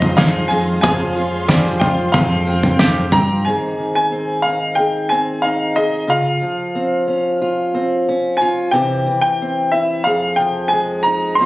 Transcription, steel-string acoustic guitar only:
0, 0, Header, 1, 2, 480
1, 0, Start_track
1, 0, Key_signature, -4, "minor"
1, 0, Tempo, 658617
1, 606, Time_signature, 4, 2, 24, 8
1, 8349, End_track
2, 0, Start_track
2, 0, Title_t, "Steel-string acoustic guitar"
2, 0, Program_c, 0, 25
2, 0, Note_on_c, 0, 41, 66
2, 0, Note_on_c, 0, 60, 58
2, 0, Note_on_c, 0, 63, 58
2, 125, Note_on_c, 0, 53, 71
2, 377, Note_off_c, 0, 60, 0
2, 380, Note_on_c, 0, 56, 59
2, 575, Note_off_c, 0, 53, 0
2, 580, Note_off_c, 0, 63, 0
2, 592, Note_off_c, 0, 41, 0
2, 600, Note_on_c, 0, 41, 67
2, 606, Note_on_c, 0, 53, 51
2, 609, Note_off_c, 0, 56, 0
2, 612, Note_on_c, 0, 60, 55
2, 616, Note_on_c, 0, 61, 59
2, 619, Note_on_c, 0, 65, 59
2, 846, Note_off_c, 0, 61, 0
2, 855, Note_on_c, 0, 61, 54
2, 1074, Note_off_c, 0, 53, 0
2, 1082, Note_on_c, 0, 53, 60
2, 1325, Note_off_c, 0, 60, 0
2, 1341, Note_on_c, 0, 60, 56
2, 1531, Note_off_c, 0, 53, 0
2, 1537, Note_off_c, 0, 61, 0
2, 1541, Note_off_c, 0, 60, 0
2, 1558, Note_off_c, 0, 41, 0
2, 1568, Note_on_c, 0, 41, 63
2, 1801, Note_on_c, 0, 60, 58
2, 2027, Note_off_c, 0, 41, 0
2, 2035, Note_on_c, 0, 41, 67
2, 2264, Note_off_c, 0, 41, 0
2, 2266, Note_on_c, 0, 43, 60
2, 2512, Note_off_c, 0, 43, 0
2, 2520, Note_on_c, 0, 44, 48
2, 2522, Note_off_c, 0, 60, 0
2, 2524, Note_on_c, 0, 51, 41
2, 2530, Note_on_c, 0, 60, 42
2, 2535, Note_on_c, 0, 63, 43
2, 2537, Note_off_c, 0, 65, 0
2, 2540, Note_on_c, 0, 68, 49
2, 2747, Note_off_c, 0, 51, 0
2, 2756, Note_on_c, 0, 51, 42
2, 2999, Note_off_c, 0, 60, 0
2, 3002, Note_on_c, 0, 60, 45
2, 3242, Note_off_c, 0, 63, 0
2, 3251, Note_on_c, 0, 63, 39
2, 3484, Note_off_c, 0, 68, 0
2, 3487, Note_on_c, 0, 68, 43
2, 3726, Note_off_c, 0, 60, 0
2, 3729, Note_on_c, 0, 60, 45
2, 3955, Note_off_c, 0, 63, 0
2, 3964, Note_on_c, 0, 63, 46
2, 4203, Note_off_c, 0, 68, 0
2, 4211, Note_on_c, 0, 68, 49
2, 4411, Note_off_c, 0, 44, 0
2, 4413, Note_off_c, 0, 63, 0
2, 4416, Note_off_c, 0, 68, 0
2, 4427, Note_on_c, 0, 49, 55
2, 4437, Note_off_c, 0, 51, 0
2, 4437, Note_on_c, 0, 65, 49
2, 4448, Note_off_c, 0, 60, 0
2, 4673, Note_off_c, 0, 49, 0
2, 4676, Note_on_c, 0, 53, 45
2, 4921, Note_on_c, 0, 60, 46
2, 5156, Note_on_c, 0, 61, 47
2, 5396, Note_off_c, 0, 65, 0
2, 5405, Note_on_c, 0, 65, 46
2, 5642, Note_off_c, 0, 60, 0
2, 5645, Note_on_c, 0, 60, 45
2, 5880, Note_off_c, 0, 61, 0
2, 5893, Note_on_c, 0, 61, 47
2, 6125, Note_off_c, 0, 65, 0
2, 6133, Note_on_c, 0, 65, 52
2, 6333, Note_off_c, 0, 53, 0
2, 6340, Note_off_c, 0, 61, 0
2, 6360, Note_on_c, 0, 48, 56
2, 6365, Note_on_c, 0, 52, 44
2, 6368, Note_off_c, 0, 60, 0
2, 6368, Note_off_c, 0, 65, 0
2, 6371, Note_on_c, 0, 60, 41
2, 6374, Note_on_c, 0, 64, 46
2, 6379, Note_on_c, 0, 67, 50
2, 6596, Note_off_c, 0, 52, 0
2, 6602, Note_off_c, 0, 48, 0
2, 6605, Note_on_c, 0, 52, 46
2, 6849, Note_off_c, 0, 60, 0
2, 6864, Note_on_c, 0, 60, 45
2, 7084, Note_off_c, 0, 64, 0
2, 7093, Note_on_c, 0, 64, 43
2, 7298, Note_off_c, 0, 52, 0
2, 7301, Note_off_c, 0, 64, 0
2, 7305, Note_off_c, 0, 67, 0
2, 7307, Note_off_c, 0, 60, 0
2, 7331, Note_on_c, 0, 41, 52
2, 7337, Note_on_c, 0, 68, 43
2, 7572, Note_on_c, 0, 53, 48
2, 7816, Note_on_c, 0, 56, 47
2, 8060, Note_on_c, 0, 63, 42
2, 8262, Note_off_c, 0, 53, 0
2, 8266, Note_off_c, 0, 63, 0
2, 8289, Note_off_c, 0, 41, 0
2, 8298, Note_on_c, 0, 41, 57
2, 8307, Note_off_c, 0, 56, 0
2, 8307, Note_on_c, 0, 53, 47
2, 8310, Note_on_c, 0, 60, 43
2, 8315, Note_off_c, 0, 68, 0
2, 8316, Note_on_c, 0, 61, 44
2, 8318, Note_on_c, 0, 65, 48
2, 8349, Note_off_c, 0, 41, 0
2, 8349, Note_off_c, 0, 53, 0
2, 8349, Note_off_c, 0, 60, 0
2, 8349, Note_off_c, 0, 61, 0
2, 8349, Note_off_c, 0, 65, 0
2, 8349, End_track
0, 0, End_of_file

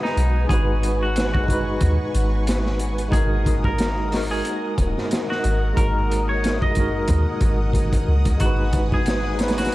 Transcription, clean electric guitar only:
0, 0, Header, 1, 2, 480
1, 0, Start_track
1, 0, Key_signature, 5, "minor"
1, 0, Tempo, 659341
1, 354, Time_signature, 4, 2, 24, 8
1, 7097, End_track
2, 0, Start_track
2, 0, Title_t, "Clean electric guitar"
2, 0, Program_c, 0, 27
2, 23, Note_on_c, 0, 63, 96
2, 329, Note_off_c, 0, 63, 0
2, 358, Note_on_c, 0, 68, 94
2, 691, Note_off_c, 0, 68, 0
2, 746, Note_on_c, 0, 66, 95
2, 951, Note_off_c, 0, 66, 0
2, 972, Note_on_c, 0, 66, 91
2, 2192, Note_off_c, 0, 66, 0
2, 2274, Note_on_c, 0, 68, 100
2, 2609, Note_off_c, 0, 68, 0
2, 2656, Note_on_c, 0, 70, 100
2, 3079, Note_off_c, 0, 70, 0
2, 3138, Note_on_c, 0, 68, 94
2, 3447, Note_off_c, 0, 68, 0
2, 3859, Note_on_c, 0, 66, 96
2, 4167, Note_off_c, 0, 66, 0
2, 4200, Note_on_c, 0, 70, 89
2, 4533, Note_off_c, 0, 70, 0
2, 4579, Note_on_c, 0, 73, 95
2, 4787, Note_off_c, 0, 73, 0
2, 4822, Note_on_c, 0, 75, 91
2, 6037, Note_off_c, 0, 75, 0
2, 6120, Note_on_c, 0, 66, 94
2, 6453, Note_off_c, 0, 66, 0
2, 6506, Note_on_c, 0, 68, 97
2, 6924, Note_off_c, 0, 68, 0
2, 6975, Note_on_c, 0, 66, 91
2, 7097, Note_off_c, 0, 66, 0
2, 7097, End_track
0, 0, End_of_file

